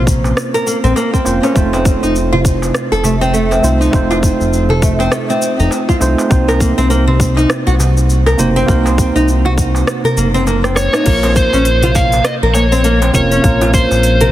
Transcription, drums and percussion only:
0.07 kick, cabasa
0.24 darbuka tek, cabasa
0.37 cross-stick, cabasa
0.55 darbuka tek, cabasa
0.67 cabasa
0.85 cabasa
0.96 darbuka tek, cabasa
1.14 kick, cabasa
1.25 darbuka ka, cabasa
1.43 darbuka ka, darbuka tek, cabasa
1.56 kick, cabasa
1.73 darbuka tek, cabasa
1.85 kick, cabasa
2.03 cabasa
2.16 cabasa
2.33 darbuka dum
2.45 kick, cabasa
2.62 darbuka tek, cabasa
2.75 cross-stick, cabasa
2.92 darbuka ka, cabasa
3.04 darbuka tek, darbuka dum, cabasa
3.21 darbuka ka, cabasa
3.34 cabasa
3.52 darbuka tek, cabasa
3.64 darbuka dum, cabasa
3.82 cabasa
3.93 kick, cabasa
4.11 darbuka tek, cabasa
4.23 kick, cabasa
4.41 cabasa
4.53 cabasa
4.69 darbuka ka, darbuka dum
4.82 kick, cabasa
4.99 darbuka tek, cabasa
5.12 cross-stick, cabasa
5.29 darbuka tek, cabasa
5.42 cabasa
5.60 cabasa
5.71 darbuka tek, cabasa
5.89 kick, cabasa
6.01 darbuka ka, cabasa
6.18 darbuka ka, darbuka tek, cabasa
6.31 kick, cabasa
6.49 darbuka tek, cabasa
6.60 kick, cabasa
6.78 cabasa
6.91 cabasa
7.08 darbuka dum
7.20 kick, cabasa
7.37 darbuka tek, cabasa
7.50 cross-stick, cabasa
7.67 darbuka ka, cabasa
7.79 darbuka tek, darbuka dum, cabasa
7.97 darbuka ka, cabasa
8.10 cabasa
8.26 darbuka tek, cabasa
8.39 darbuka dum, cabasa
8.57 cabasa
8.68 kick, cabasa
8.86 darbuka tek, cabasa
8.98 kick, cabasa
9.16 cabasa
9.28 cabasa
9.45 darbuka ka, darbuka dum
9.58 kick, cabasa
9.75 darbuka tek, cabasa
9.87 cross-stick, cabasa
10.04 darbuka tek, darbuka dum, cabasa
10.17 cabasa
10.35 cabasa
10.47 darbuka tek, cabasa
10.64 cross-stick, cabasa
10.75 cross-stick, darbuka ka, cabasa
10.93 cross-stick, darbuka ka, darbuka tek, cabasa
11.06 kick, open hi-hat, crash, cabasa
11.23 open hi-hat, darbuka tek
11.36 kick, cabasa
11.53 darbuka ka, cabasa
11.65 open hi-hat, cabasa
11.82 open hi-hat, darbuka dum
11.95 kick, cabasa
12.12 open hi-hat, darbuka ka, darbuka tek, cabasa
12.25 cross-stick, open hi-hat, cabasa
12.54 darbuka ka, darbuka tek, cabasa
12.72 cabasa
12.84 open hi-hat, cabasa
13.02 open hi-hat, darbuka ka, darbuka tek
13.13 kick, darbuka dum, cabasa
13.31 open hi-hat, cabasa
13.44 kick, open hi-hat, cabasa
13.61 open hi-hat, darbuka tek
13.74 kick, cabasa
13.91 darbuka ka, cabasa
14.03 open hi-hat, cabasa
14.21 open hi-hat, darbuka dum

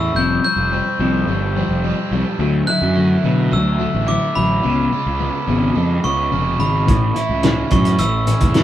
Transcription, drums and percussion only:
6.88 kick, closed hi-hat
7.16 closed hi-hat
7.43 snare, closed hi-hat
7.71 kick, closed hi-hat
7.85 closed hi-hat
7.99 closed hi-hat
8.27 closed hi-hat
8.41 kick, closed hi-hat
8.54 snare, closed hi-hat

